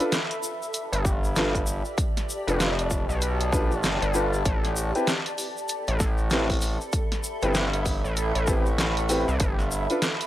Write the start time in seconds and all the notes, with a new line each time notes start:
Already playing: G4 A4 D5 E5 B5
0.00 D4 F4 A4 B4, closed hi-hat, shaker
0.12 snare, closed hi-hat, shaker
0.31 closed hi-hat, shaker
0.43 shaker
0.62 shaker
0.74 closed hi-hat, shaker
0.92 G1, closed hi-hat, shaker
1.05 A5, kick, shaker
1.24 shaker
1.36 D4 F4 A4 B4, snare, closed hi-hat, shaker
1.55 kick, closed hi-hat, shaker
1.66 shaker
1.85 shaker
1.98 kick, closed hi-hat, shaker
2.17 snare, closed hi-hat, shaker
2.30 shaker
2.47 F1 D4 F4 A4 B4, closed hi-hat, shaker
2.60 snare, closed hi-hat, shaker
2.79 closed hi-hat, shaker
2.90 kick, shaker
3.09 B1, shaker
3.22 closed hi-hat, shaker
3.41 closed hi-hat, shaker
3.53 D4 F4 A4 B4, kick, shaker
3.72 shaker
3.83 snare, closed hi-hat, shaker
4.02 G1, closed hi-hat, shaker
4.14 D4 F4 A4 B4, shaker
4.33 shaker
4.45 A1 A4, kick, closed hi-hat, shaker
4.64 snare, closed hi-hat, shaker
4.76 shaker
4.95 C4 E4 G4 B4, closed hi-hat, shaker
5.06 E5, snare, closed hi-hat, shaker
5.26 closed hi-hat, shaker
5.38 open hi-hat, shaker
5.42 B5
5.57 shaker
5.68 closed hi-hat, shaker
5.87 A1, closed hi-hat, shaker
6.00 kick, snare, shaker
6.18 shaker
6.30 C4 E4 G4 B4, snare, closed hi-hat, shaker
6.50 kick, closed hi-hat, shaker
6.52 closed hi-hat
6.54 closed hi-hat
6.55 closed hi-hat
6.57 closed hi-hat
6.59 closed hi-hat
6.60 closed hi-hat, open hi-hat, shaker
6.81 shaker
6.93 kick, closed hi-hat, shaker
7.12 snare, closed hi-hat, shaker
7.23 shaker
7.42 G1 C4 E4 G4 B4, closed hi-hat, shaker
7.54 snare, closed hi-hat, shaker
7.73 closed hi-hat, shaker
7.86 kick, open hi-hat, shaker
8.04 A1, shaker
8.17 closed hi-hat, shaker
8.35 A1, closed hi-hat, shaker
8.47 C4 E4 G4 B4, kick, shaker
8.66 shaker
8.78 snare, closed hi-hat, shaker
8.97 closed hi-hat, shaker
9.09 C4 E4 G4 B4, open hi-hat, shaker
9.28 C2, shaker
9.40 G1 G4, kick, closed hi-hat, shaker
9.59 snare, shaker
9.70 D5, shaker
9.90 D4 F4 A4 B4, closed hi-hat, shaker
10.02 snare, closed hi-hat, shaker
10.21 A5, closed hi-hat, shaker